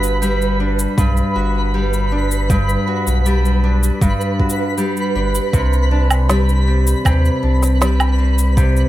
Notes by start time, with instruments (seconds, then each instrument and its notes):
Already playing: sub bass G1, nylon-string guitar G2 G3 D4 F#4, synth texture B4 B5
0.03 cabasa
0.22 nylon-string guitar G3, cabasa
0.42 cabasa
0.60 nylon-string guitar D4
0.79 cabasa
0.98 sub bass B1, nylon-string guitar G2, kick, cabasa
1.17 cabasa
1.36 sub bass G1, nylon-string guitar F#4
1.74 nylon-string guitar G3
1.93 cabasa
2.12 nylon-string guitar D4
2.31 cabasa
2.50 nylon-string guitar G2, kick, cabasa
2.69 cabasa
2.88 nylon-string guitar F#4
3.07 sub bass B1, cabasa
3.26 nylon-string guitar G3, cabasa
3.45 cabasa
3.64 nylon-string guitar D4
3.83 cabasa
4.01 sub bass G1, nylon-string guitar G2, kick, cabasa
4.21 cabasa
4.39 nylon-string guitar F#4, kick
4.49 cabasa
4.78 nylon-string guitar G3, cabasa
4.97 cabasa
5.15 sub bass G1, nylon-string guitar D4
5.35 cabasa
5.53 sub bass C2, nylon-string guitar C3, kick, cabasa
5.73 cabasa
5.91 nylon-string guitar D4
6.11 cabasa, low woodblock
6.29 nylon-string guitar G3, snare, cabasa
6.49 cabasa
6.67 nylon-string guitar C4
6.87 cabasa
7.05 sub bass D#2, nylon-string guitar C3, kick, cabasa, low woodblock
7.25 cabasa
7.43 sub bass C2, nylon-string guitar D4
7.63 snare, cabasa
7.81 nylon-string guitar G3, snare, cabasa
8.00 cabasa, low woodblock
8.19 nylon-string guitar C4
8.38 cabasa
8.57 nylon-string guitar C3, kick, cabasa
8.76 cabasa